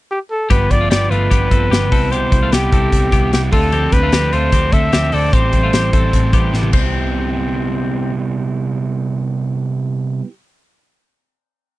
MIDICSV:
0, 0, Header, 1, 6, 480
1, 0, Start_track
1, 0, Key_signature, 0, "major"
1, 0, Tempo, 402685
1, 602, Time_signature, 4, 2, 24, 8
1, 14047, End_track
2, 0, Start_track
2, 0, Title_t, "Trumpet"
2, 0, Program_c, 0, 56
2, 130, Note_on_c, 0, 67, 68
2, 236, Note_off_c, 0, 67, 0
2, 370, Note_on_c, 0, 69, 75
2, 590, Note_off_c, 0, 69, 0
2, 609, Note_on_c, 0, 71, 81
2, 850, Note_on_c, 0, 74, 93
2, 868, Note_off_c, 0, 71, 0
2, 1075, Note_off_c, 0, 74, 0
2, 1082, Note_on_c, 0, 74, 92
2, 1322, Note_on_c, 0, 71, 80
2, 1340, Note_off_c, 0, 74, 0
2, 2524, Note_on_c, 0, 72, 90
2, 2542, Note_off_c, 0, 71, 0
2, 3015, Note_on_c, 0, 67, 81
2, 3033, Note_off_c, 0, 72, 0
2, 3968, Note_off_c, 0, 67, 0
2, 3974, Note_on_c, 0, 67, 72
2, 4079, Note_off_c, 0, 67, 0
2, 4209, Note_on_c, 0, 69, 88
2, 4685, Note_on_c, 0, 71, 95
2, 4703, Note_off_c, 0, 69, 0
2, 5164, Note_on_c, 0, 72, 96
2, 5182, Note_off_c, 0, 71, 0
2, 5638, Note_on_c, 0, 76, 90
2, 5656, Note_off_c, 0, 72, 0
2, 6126, Note_on_c, 0, 74, 94
2, 6144, Note_off_c, 0, 76, 0
2, 6361, Note_on_c, 0, 72, 82
2, 6379, Note_off_c, 0, 74, 0
2, 7794, Note_off_c, 0, 72, 0
2, 14047, End_track
3, 0, Start_track
3, 0, Title_t, "Clean electric guitar"
3, 0, Program_c, 1, 27
3, 598, Note_on_c, 1, 67, 77
3, 606, Note_on_c, 1, 59, 66
3, 939, Note_off_c, 1, 67, 0
3, 944, Note_off_c, 1, 59, 0
3, 962, Note_on_c, 1, 65, 72
3, 973, Note_on_c, 1, 57, 48
3, 1076, Note_off_c, 1, 65, 0
3, 1081, Note_on_c, 1, 67, 80
3, 1089, Note_off_c, 1, 57, 0
3, 1092, Note_on_c, 1, 59, 59
3, 1317, Note_off_c, 1, 67, 0
3, 1322, Note_on_c, 1, 65, 65
3, 1328, Note_off_c, 1, 59, 0
3, 1330, Note_on_c, 1, 57, 46
3, 1552, Note_off_c, 1, 65, 0
3, 1557, Note_on_c, 1, 67, 74
3, 1565, Note_on_c, 1, 59, 55
3, 1567, Note_off_c, 1, 57, 0
3, 1795, Note_off_c, 1, 67, 0
3, 1799, Note_on_c, 1, 69, 58
3, 1805, Note_off_c, 1, 59, 0
3, 1808, Note_on_c, 1, 60, 46
3, 2038, Note_off_c, 1, 69, 0
3, 2043, Note_on_c, 1, 67, 83
3, 2046, Note_off_c, 1, 60, 0
3, 2053, Note_on_c, 1, 59, 62
3, 2283, Note_off_c, 1, 67, 0
3, 2288, Note_on_c, 1, 69, 86
3, 2289, Note_off_c, 1, 59, 0
3, 2294, Note_on_c, 1, 60, 63
3, 2521, Note_off_c, 1, 69, 0
3, 2526, Note_on_c, 1, 67, 86
3, 2529, Note_off_c, 1, 60, 0
3, 2535, Note_on_c, 1, 47, 65
3, 2864, Note_off_c, 1, 67, 0
3, 2868, Note_off_c, 1, 47, 0
3, 2890, Note_on_c, 1, 65, 78
3, 2899, Note_on_c, 1, 57, 61
3, 3007, Note_off_c, 1, 65, 0
3, 3011, Note_off_c, 1, 57, 0
3, 3011, Note_on_c, 1, 67, 85
3, 3022, Note_on_c, 1, 59, 58
3, 3244, Note_off_c, 1, 67, 0
3, 3248, Note_on_c, 1, 69, 58
3, 3253, Note_off_c, 1, 59, 0
3, 3258, Note_on_c, 1, 60, 45
3, 3697, Note_off_c, 1, 69, 0
3, 3701, Note_off_c, 1, 60, 0
3, 3725, Note_on_c, 1, 67, 71
3, 3733, Note_on_c, 1, 59, 56
3, 4174, Note_off_c, 1, 67, 0
3, 4178, Note_off_c, 1, 59, 0
3, 4201, Note_on_c, 1, 65, 70
3, 4210, Note_on_c, 1, 57, 60
3, 4439, Note_off_c, 1, 65, 0
3, 4443, Note_on_c, 1, 67, 79
3, 4445, Note_off_c, 1, 57, 0
3, 4450, Note_on_c, 1, 60, 65
3, 4780, Note_off_c, 1, 67, 0
3, 4783, Note_off_c, 1, 60, 0
3, 4804, Note_on_c, 1, 65, 65
3, 4813, Note_on_c, 1, 57, 54
3, 4919, Note_off_c, 1, 65, 0
3, 4923, Note_on_c, 1, 67, 85
3, 4926, Note_off_c, 1, 57, 0
3, 4930, Note_on_c, 1, 60, 58
3, 5154, Note_off_c, 1, 67, 0
3, 5158, Note_on_c, 1, 65, 71
3, 5164, Note_off_c, 1, 60, 0
3, 5170, Note_on_c, 1, 57, 48
3, 5392, Note_off_c, 1, 65, 0
3, 5397, Note_on_c, 1, 67, 76
3, 5404, Note_off_c, 1, 57, 0
3, 5409, Note_on_c, 1, 60, 56
3, 5631, Note_off_c, 1, 67, 0
3, 5634, Note_off_c, 1, 60, 0
3, 5635, Note_on_c, 1, 69, 66
3, 5648, Note_on_c, 1, 60, 55
3, 5869, Note_off_c, 1, 60, 0
3, 5871, Note_off_c, 1, 69, 0
3, 5875, Note_on_c, 1, 67, 86
3, 5884, Note_on_c, 1, 60, 61
3, 6108, Note_off_c, 1, 67, 0
3, 6109, Note_off_c, 1, 60, 0
3, 6113, Note_on_c, 1, 69, 81
3, 6123, Note_on_c, 1, 60, 71
3, 6351, Note_off_c, 1, 60, 0
3, 6351, Note_off_c, 1, 69, 0
3, 6356, Note_on_c, 1, 67, 87
3, 6365, Note_on_c, 1, 60, 69
3, 6693, Note_off_c, 1, 67, 0
3, 6698, Note_off_c, 1, 60, 0
3, 6717, Note_on_c, 1, 65, 75
3, 6724, Note_on_c, 1, 57, 61
3, 6832, Note_off_c, 1, 65, 0
3, 6837, Note_on_c, 1, 67, 80
3, 6839, Note_off_c, 1, 57, 0
3, 6847, Note_on_c, 1, 60, 65
3, 7063, Note_off_c, 1, 60, 0
3, 7065, Note_off_c, 1, 67, 0
3, 7070, Note_on_c, 1, 69, 57
3, 7077, Note_on_c, 1, 60, 52
3, 7521, Note_off_c, 1, 69, 0
3, 7525, Note_off_c, 1, 60, 0
3, 7548, Note_on_c, 1, 67, 64
3, 7559, Note_on_c, 1, 59, 49
3, 8000, Note_off_c, 1, 67, 0
3, 8006, Note_off_c, 1, 59, 0
3, 8029, Note_on_c, 1, 60, 82
3, 9662, Note_off_c, 1, 60, 0
3, 14047, End_track
4, 0, Start_track
4, 0, Title_t, "Overdriven electric guitar"
4, 0, Program_c, 2, 29
4, 596, Note_on_c, 2, 43, 68
4, 605, Note_on_c, 2, 50, 65
4, 610, Note_on_c, 2, 53, 63
4, 615, Note_on_c, 2, 59, 76
4, 623, Note_on_c, 2, 65, 68
4, 816, Note_off_c, 2, 65, 0
4, 830, Note_on_c, 2, 65, 48
4, 838, Note_off_c, 2, 59, 0
4, 840, Note_off_c, 2, 43, 0
4, 844, Note_off_c, 2, 50, 0
4, 847, Note_off_c, 2, 53, 0
4, 853, Note_on_c, 2, 59, 51
4, 869, Note_on_c, 2, 53, 44
4, 1074, Note_on_c, 2, 50, 53
4, 1077, Note_off_c, 2, 65, 0
4, 1078, Note_off_c, 2, 53, 0
4, 1088, Note_off_c, 2, 59, 0
4, 1092, Note_on_c, 2, 53, 56
4, 1102, Note_on_c, 2, 59, 54
4, 1115, Note_on_c, 2, 65, 59
4, 1307, Note_off_c, 2, 65, 0
4, 1319, Note_off_c, 2, 50, 0
4, 1321, Note_on_c, 2, 65, 45
4, 1328, Note_off_c, 2, 53, 0
4, 1328, Note_off_c, 2, 59, 0
4, 1342, Note_on_c, 2, 59, 43
4, 1357, Note_on_c, 2, 53, 39
4, 1563, Note_off_c, 2, 65, 0
4, 1565, Note_on_c, 2, 43, 66
4, 1570, Note_off_c, 2, 53, 0
4, 1573, Note_off_c, 2, 59, 0
4, 1578, Note_on_c, 2, 50, 68
4, 1584, Note_on_c, 2, 53, 71
4, 1592, Note_on_c, 2, 59, 83
4, 1596, Note_on_c, 2, 65, 81
4, 1786, Note_off_c, 2, 65, 0
4, 1801, Note_on_c, 2, 65, 50
4, 1805, Note_off_c, 2, 43, 0
4, 1809, Note_off_c, 2, 59, 0
4, 1811, Note_off_c, 2, 50, 0
4, 1815, Note_off_c, 2, 53, 0
4, 1823, Note_on_c, 2, 59, 45
4, 1839, Note_on_c, 2, 53, 44
4, 2043, Note_off_c, 2, 65, 0
4, 2045, Note_on_c, 2, 50, 61
4, 2049, Note_off_c, 2, 53, 0
4, 2054, Note_off_c, 2, 59, 0
4, 2063, Note_on_c, 2, 53, 69
4, 2071, Note_on_c, 2, 59, 67
4, 2085, Note_on_c, 2, 65, 66
4, 2279, Note_off_c, 2, 65, 0
4, 2284, Note_on_c, 2, 64, 60
4, 2285, Note_off_c, 2, 50, 0
4, 2289, Note_off_c, 2, 59, 0
4, 2294, Note_off_c, 2, 53, 0
4, 2303, Note_on_c, 2, 59, 47
4, 2320, Note_on_c, 2, 55, 52
4, 2523, Note_off_c, 2, 55, 0
4, 2524, Note_off_c, 2, 64, 0
4, 2527, Note_on_c, 2, 48, 60
4, 2530, Note_off_c, 2, 59, 0
4, 2537, Note_on_c, 2, 55, 67
4, 2544, Note_on_c, 2, 59, 67
4, 2553, Note_on_c, 2, 64, 77
4, 2753, Note_off_c, 2, 64, 0
4, 2765, Note_off_c, 2, 48, 0
4, 2767, Note_on_c, 2, 64, 55
4, 2771, Note_off_c, 2, 55, 0
4, 2774, Note_off_c, 2, 59, 0
4, 2787, Note_on_c, 2, 59, 42
4, 2805, Note_on_c, 2, 55, 40
4, 2997, Note_off_c, 2, 55, 0
4, 2997, Note_on_c, 2, 48, 59
4, 3006, Note_off_c, 2, 64, 0
4, 3008, Note_off_c, 2, 59, 0
4, 3012, Note_on_c, 2, 55, 53
4, 3023, Note_on_c, 2, 59, 61
4, 3036, Note_on_c, 2, 64, 66
4, 3221, Note_off_c, 2, 64, 0
4, 3236, Note_on_c, 2, 64, 52
4, 3240, Note_off_c, 2, 48, 0
4, 3244, Note_off_c, 2, 59, 0
4, 3247, Note_off_c, 2, 55, 0
4, 3258, Note_on_c, 2, 59, 42
4, 3270, Note_on_c, 2, 55, 45
4, 3465, Note_off_c, 2, 55, 0
4, 3466, Note_on_c, 2, 48, 65
4, 3473, Note_off_c, 2, 59, 0
4, 3479, Note_off_c, 2, 64, 0
4, 3480, Note_on_c, 2, 55, 73
4, 3487, Note_on_c, 2, 59, 78
4, 3496, Note_on_c, 2, 64, 72
4, 3682, Note_off_c, 2, 64, 0
4, 3696, Note_on_c, 2, 64, 61
4, 3704, Note_off_c, 2, 59, 0
4, 3714, Note_off_c, 2, 48, 0
4, 3718, Note_on_c, 2, 59, 50
4, 3721, Note_off_c, 2, 55, 0
4, 3734, Note_on_c, 2, 55, 53
4, 3947, Note_off_c, 2, 55, 0
4, 3949, Note_off_c, 2, 64, 0
4, 3949, Note_on_c, 2, 48, 59
4, 3960, Note_off_c, 2, 59, 0
4, 3962, Note_on_c, 2, 55, 54
4, 3978, Note_on_c, 2, 59, 59
4, 3985, Note_on_c, 2, 64, 61
4, 4186, Note_on_c, 2, 69, 50
4, 4195, Note_off_c, 2, 48, 0
4, 4201, Note_off_c, 2, 55, 0
4, 4203, Note_off_c, 2, 64, 0
4, 4208, Note_on_c, 2, 62, 46
4, 4209, Note_off_c, 2, 59, 0
4, 4226, Note_on_c, 2, 60, 43
4, 4430, Note_off_c, 2, 60, 0
4, 4431, Note_on_c, 2, 50, 70
4, 4433, Note_off_c, 2, 69, 0
4, 4439, Note_off_c, 2, 62, 0
4, 4442, Note_on_c, 2, 53, 71
4, 4444, Note_on_c, 2, 60, 71
4, 4453, Note_on_c, 2, 62, 72
4, 4456, Note_on_c, 2, 69, 72
4, 4660, Note_off_c, 2, 69, 0
4, 4675, Note_off_c, 2, 50, 0
4, 4675, Note_on_c, 2, 69, 52
4, 4678, Note_off_c, 2, 62, 0
4, 4681, Note_off_c, 2, 53, 0
4, 4682, Note_off_c, 2, 60, 0
4, 4693, Note_on_c, 2, 62, 44
4, 4709, Note_on_c, 2, 60, 42
4, 4914, Note_off_c, 2, 60, 0
4, 4915, Note_on_c, 2, 53, 57
4, 4917, Note_off_c, 2, 69, 0
4, 4926, Note_off_c, 2, 62, 0
4, 4928, Note_on_c, 2, 60, 60
4, 4939, Note_on_c, 2, 62, 65
4, 4950, Note_on_c, 2, 69, 69
4, 5136, Note_off_c, 2, 69, 0
4, 5151, Note_on_c, 2, 69, 54
4, 5156, Note_off_c, 2, 53, 0
4, 5162, Note_off_c, 2, 62, 0
4, 5163, Note_off_c, 2, 60, 0
4, 5176, Note_on_c, 2, 62, 47
4, 5192, Note_on_c, 2, 60, 45
4, 5393, Note_on_c, 2, 50, 65
4, 5394, Note_off_c, 2, 60, 0
4, 5394, Note_off_c, 2, 69, 0
4, 5398, Note_off_c, 2, 62, 0
4, 5403, Note_on_c, 2, 53, 74
4, 5408, Note_on_c, 2, 60, 77
4, 5412, Note_on_c, 2, 62, 84
4, 5422, Note_on_c, 2, 69, 83
4, 5622, Note_off_c, 2, 69, 0
4, 5635, Note_off_c, 2, 50, 0
4, 5636, Note_on_c, 2, 69, 51
4, 5639, Note_off_c, 2, 62, 0
4, 5640, Note_off_c, 2, 53, 0
4, 5642, Note_off_c, 2, 60, 0
4, 5653, Note_on_c, 2, 62, 50
4, 5673, Note_on_c, 2, 60, 45
4, 5864, Note_off_c, 2, 60, 0
4, 5865, Note_on_c, 2, 53, 58
4, 5875, Note_off_c, 2, 62, 0
4, 5876, Note_off_c, 2, 69, 0
4, 5878, Note_on_c, 2, 60, 62
4, 5890, Note_on_c, 2, 62, 60
4, 5905, Note_on_c, 2, 69, 62
4, 6088, Note_off_c, 2, 69, 0
4, 6103, Note_on_c, 2, 69, 55
4, 6108, Note_off_c, 2, 62, 0
4, 6110, Note_off_c, 2, 53, 0
4, 6116, Note_off_c, 2, 60, 0
4, 6122, Note_on_c, 2, 62, 46
4, 6138, Note_on_c, 2, 60, 44
4, 6348, Note_off_c, 2, 69, 0
4, 6351, Note_on_c, 2, 45, 63
4, 6356, Note_off_c, 2, 60, 0
4, 6358, Note_off_c, 2, 62, 0
4, 6359, Note_on_c, 2, 52, 68
4, 6362, Note_on_c, 2, 55, 63
4, 6370, Note_on_c, 2, 60, 70
4, 6372, Note_on_c, 2, 64, 76
4, 6378, Note_on_c, 2, 69, 76
4, 6584, Note_off_c, 2, 69, 0
4, 6592, Note_off_c, 2, 45, 0
4, 6596, Note_off_c, 2, 52, 0
4, 6598, Note_off_c, 2, 55, 0
4, 6598, Note_on_c, 2, 69, 51
4, 6599, Note_off_c, 2, 64, 0
4, 6602, Note_off_c, 2, 60, 0
4, 6613, Note_on_c, 2, 64, 46
4, 6625, Note_on_c, 2, 60, 41
4, 6635, Note_on_c, 2, 55, 42
4, 6815, Note_off_c, 2, 55, 0
4, 6829, Note_on_c, 2, 55, 51
4, 6835, Note_off_c, 2, 60, 0
4, 6835, Note_off_c, 2, 69, 0
4, 6843, Note_off_c, 2, 64, 0
4, 6849, Note_on_c, 2, 60, 65
4, 6860, Note_on_c, 2, 64, 60
4, 6870, Note_on_c, 2, 69, 61
4, 7051, Note_off_c, 2, 69, 0
4, 7065, Note_on_c, 2, 69, 61
4, 7067, Note_off_c, 2, 64, 0
4, 7071, Note_off_c, 2, 55, 0
4, 7081, Note_off_c, 2, 60, 0
4, 7081, Note_on_c, 2, 64, 45
4, 7094, Note_on_c, 2, 60, 41
4, 7106, Note_on_c, 2, 55, 51
4, 7304, Note_off_c, 2, 55, 0
4, 7304, Note_off_c, 2, 60, 0
4, 7305, Note_on_c, 2, 45, 90
4, 7307, Note_on_c, 2, 52, 87
4, 7308, Note_off_c, 2, 69, 0
4, 7309, Note_off_c, 2, 64, 0
4, 7318, Note_on_c, 2, 55, 76
4, 7318, Note_on_c, 2, 60, 81
4, 7323, Note_on_c, 2, 64, 88
4, 7327, Note_on_c, 2, 69, 81
4, 7531, Note_off_c, 2, 69, 0
4, 7544, Note_off_c, 2, 64, 0
4, 7545, Note_on_c, 2, 69, 54
4, 7548, Note_off_c, 2, 45, 0
4, 7549, Note_off_c, 2, 52, 0
4, 7555, Note_off_c, 2, 55, 0
4, 7555, Note_off_c, 2, 60, 0
4, 7558, Note_on_c, 2, 64, 54
4, 7575, Note_on_c, 2, 60, 52
4, 7584, Note_on_c, 2, 55, 48
4, 7768, Note_off_c, 2, 55, 0
4, 7779, Note_off_c, 2, 60, 0
4, 7783, Note_on_c, 2, 55, 58
4, 7788, Note_off_c, 2, 69, 0
4, 7793, Note_on_c, 2, 60, 61
4, 7794, Note_off_c, 2, 64, 0
4, 7807, Note_on_c, 2, 64, 74
4, 7816, Note_on_c, 2, 69, 62
4, 7991, Note_on_c, 2, 48, 69
4, 8021, Note_off_c, 2, 55, 0
4, 8032, Note_off_c, 2, 60, 0
4, 8036, Note_on_c, 2, 55, 73
4, 8039, Note_off_c, 2, 64, 0
4, 8043, Note_off_c, 2, 69, 0
4, 8073, Note_on_c, 2, 59, 93
4, 8112, Note_on_c, 2, 64, 83
4, 8143, Note_on_c, 2, 67, 79
4, 12163, Note_off_c, 2, 48, 0
4, 12207, Note_off_c, 2, 55, 0
4, 12245, Note_off_c, 2, 59, 0
4, 12284, Note_off_c, 2, 64, 0
4, 12315, Note_off_c, 2, 67, 0
4, 14047, End_track
5, 0, Start_track
5, 0, Title_t, "Picked electric bass"
5, 0, Program_c, 3, 34
5, 603, Note_on_c, 3, 31, 95
5, 800, Note_off_c, 3, 31, 0
5, 842, Note_on_c, 3, 31, 81
5, 1040, Note_off_c, 3, 31, 0
5, 1092, Note_on_c, 3, 31, 94
5, 1286, Note_off_c, 3, 31, 0
5, 1323, Note_on_c, 3, 31, 91
5, 1521, Note_off_c, 3, 31, 0
5, 1565, Note_on_c, 3, 31, 94
5, 1762, Note_off_c, 3, 31, 0
5, 1806, Note_on_c, 3, 31, 84
5, 2002, Note_off_c, 3, 31, 0
5, 2044, Note_on_c, 3, 31, 92
5, 2290, Note_off_c, 3, 31, 0
5, 2290, Note_on_c, 3, 36, 85
5, 2681, Note_off_c, 3, 36, 0
5, 2768, Note_on_c, 3, 36, 82
5, 2963, Note_off_c, 3, 36, 0
5, 3005, Note_on_c, 3, 36, 91
5, 3201, Note_off_c, 3, 36, 0
5, 3250, Note_on_c, 3, 36, 81
5, 3444, Note_off_c, 3, 36, 0
5, 3484, Note_on_c, 3, 36, 96
5, 3680, Note_off_c, 3, 36, 0
5, 3720, Note_on_c, 3, 36, 81
5, 3918, Note_off_c, 3, 36, 0
5, 3960, Note_on_c, 3, 36, 86
5, 4157, Note_off_c, 3, 36, 0
5, 4203, Note_on_c, 3, 38, 82
5, 4595, Note_off_c, 3, 38, 0
5, 4677, Note_on_c, 3, 38, 80
5, 4874, Note_off_c, 3, 38, 0
5, 4919, Note_on_c, 3, 38, 86
5, 5115, Note_off_c, 3, 38, 0
5, 5162, Note_on_c, 3, 38, 94
5, 5357, Note_off_c, 3, 38, 0
5, 5395, Note_on_c, 3, 38, 83
5, 5592, Note_off_c, 3, 38, 0
5, 5628, Note_on_c, 3, 38, 97
5, 5828, Note_off_c, 3, 38, 0
5, 5878, Note_on_c, 3, 38, 93
5, 6073, Note_off_c, 3, 38, 0
5, 6118, Note_on_c, 3, 38, 85
5, 6313, Note_off_c, 3, 38, 0
5, 6354, Note_on_c, 3, 33, 92
5, 6551, Note_off_c, 3, 33, 0
5, 6590, Note_on_c, 3, 33, 78
5, 6788, Note_off_c, 3, 33, 0
5, 6833, Note_on_c, 3, 33, 87
5, 7030, Note_off_c, 3, 33, 0
5, 7070, Note_on_c, 3, 33, 93
5, 7267, Note_off_c, 3, 33, 0
5, 7309, Note_on_c, 3, 33, 93
5, 7506, Note_off_c, 3, 33, 0
5, 7547, Note_on_c, 3, 33, 92
5, 7745, Note_off_c, 3, 33, 0
5, 7788, Note_on_c, 3, 33, 90
5, 7986, Note_off_c, 3, 33, 0
5, 8027, Note_on_c, 3, 36, 81
5, 11772, Note_off_c, 3, 36, 0
5, 14047, End_track
6, 0, Start_track
6, 0, Title_t, "Drums"
6, 601, Note_on_c, 9, 42, 76
6, 603, Note_on_c, 9, 36, 90
6, 720, Note_off_c, 9, 42, 0
6, 723, Note_off_c, 9, 36, 0
6, 843, Note_on_c, 9, 42, 60
6, 844, Note_on_c, 9, 36, 69
6, 962, Note_off_c, 9, 42, 0
6, 963, Note_off_c, 9, 36, 0
6, 1087, Note_on_c, 9, 42, 83
6, 1094, Note_on_c, 9, 38, 109
6, 1206, Note_off_c, 9, 42, 0
6, 1213, Note_off_c, 9, 38, 0
6, 1334, Note_on_c, 9, 42, 55
6, 1453, Note_off_c, 9, 42, 0
6, 1566, Note_on_c, 9, 36, 76
6, 1568, Note_on_c, 9, 42, 85
6, 1685, Note_off_c, 9, 36, 0
6, 1687, Note_off_c, 9, 42, 0
6, 1805, Note_on_c, 9, 36, 84
6, 1812, Note_on_c, 9, 42, 64
6, 1924, Note_off_c, 9, 36, 0
6, 1931, Note_off_c, 9, 42, 0
6, 2055, Note_on_c, 9, 42, 63
6, 2064, Note_on_c, 9, 38, 111
6, 2175, Note_off_c, 9, 42, 0
6, 2183, Note_off_c, 9, 38, 0
6, 2284, Note_on_c, 9, 46, 60
6, 2289, Note_on_c, 9, 36, 95
6, 2403, Note_off_c, 9, 46, 0
6, 2408, Note_off_c, 9, 36, 0
6, 2532, Note_on_c, 9, 42, 70
6, 2651, Note_off_c, 9, 42, 0
6, 2767, Note_on_c, 9, 36, 81
6, 2767, Note_on_c, 9, 42, 64
6, 2886, Note_off_c, 9, 36, 0
6, 2886, Note_off_c, 9, 42, 0
6, 3008, Note_on_c, 9, 42, 81
6, 3015, Note_on_c, 9, 38, 104
6, 3127, Note_off_c, 9, 42, 0
6, 3134, Note_off_c, 9, 38, 0
6, 3248, Note_on_c, 9, 36, 88
6, 3256, Note_on_c, 9, 42, 58
6, 3367, Note_off_c, 9, 36, 0
6, 3375, Note_off_c, 9, 42, 0
6, 3486, Note_on_c, 9, 36, 76
6, 3490, Note_on_c, 9, 42, 81
6, 3606, Note_off_c, 9, 36, 0
6, 3609, Note_off_c, 9, 42, 0
6, 3723, Note_on_c, 9, 36, 83
6, 3733, Note_on_c, 9, 42, 58
6, 3842, Note_off_c, 9, 36, 0
6, 3852, Note_off_c, 9, 42, 0
6, 3968, Note_on_c, 9, 42, 74
6, 3976, Note_on_c, 9, 38, 97
6, 4087, Note_off_c, 9, 42, 0
6, 4095, Note_off_c, 9, 38, 0
6, 4198, Note_on_c, 9, 46, 62
6, 4203, Note_on_c, 9, 36, 96
6, 4317, Note_off_c, 9, 46, 0
6, 4322, Note_off_c, 9, 36, 0
6, 4439, Note_on_c, 9, 42, 76
6, 4558, Note_off_c, 9, 42, 0
6, 4676, Note_on_c, 9, 42, 63
6, 4679, Note_on_c, 9, 36, 82
6, 4795, Note_off_c, 9, 42, 0
6, 4798, Note_off_c, 9, 36, 0
6, 4915, Note_on_c, 9, 42, 76
6, 4922, Note_on_c, 9, 38, 115
6, 5034, Note_off_c, 9, 42, 0
6, 5042, Note_off_c, 9, 38, 0
6, 5159, Note_on_c, 9, 42, 59
6, 5278, Note_off_c, 9, 42, 0
6, 5391, Note_on_c, 9, 42, 80
6, 5394, Note_on_c, 9, 36, 76
6, 5511, Note_off_c, 9, 42, 0
6, 5513, Note_off_c, 9, 36, 0
6, 5632, Note_on_c, 9, 36, 88
6, 5634, Note_on_c, 9, 42, 56
6, 5751, Note_off_c, 9, 36, 0
6, 5754, Note_off_c, 9, 42, 0
6, 5871, Note_on_c, 9, 42, 69
6, 5880, Note_on_c, 9, 38, 113
6, 5990, Note_off_c, 9, 42, 0
6, 5999, Note_off_c, 9, 38, 0
6, 6106, Note_on_c, 9, 46, 64
6, 6225, Note_off_c, 9, 46, 0
6, 6354, Note_on_c, 9, 36, 97
6, 6355, Note_on_c, 9, 42, 76
6, 6473, Note_off_c, 9, 36, 0
6, 6474, Note_off_c, 9, 42, 0
6, 6587, Note_on_c, 9, 42, 55
6, 6593, Note_on_c, 9, 36, 70
6, 6706, Note_off_c, 9, 42, 0
6, 6712, Note_off_c, 9, 36, 0
6, 6832, Note_on_c, 9, 42, 80
6, 6839, Note_on_c, 9, 38, 102
6, 6952, Note_off_c, 9, 42, 0
6, 6959, Note_off_c, 9, 38, 0
6, 7072, Note_on_c, 9, 36, 92
6, 7075, Note_on_c, 9, 42, 59
6, 7191, Note_off_c, 9, 36, 0
6, 7195, Note_off_c, 9, 42, 0
6, 7311, Note_on_c, 9, 36, 73
6, 7314, Note_on_c, 9, 42, 79
6, 7430, Note_off_c, 9, 36, 0
6, 7433, Note_off_c, 9, 42, 0
6, 7547, Note_on_c, 9, 36, 85
6, 7551, Note_on_c, 9, 42, 56
6, 7666, Note_off_c, 9, 36, 0
6, 7670, Note_off_c, 9, 42, 0
6, 7791, Note_on_c, 9, 38, 51
6, 7903, Note_on_c, 9, 48, 54
6, 7910, Note_off_c, 9, 38, 0
6, 8021, Note_on_c, 9, 49, 72
6, 8022, Note_off_c, 9, 48, 0
6, 8027, Note_on_c, 9, 36, 89
6, 8141, Note_off_c, 9, 49, 0
6, 8146, Note_off_c, 9, 36, 0
6, 14047, End_track
0, 0, End_of_file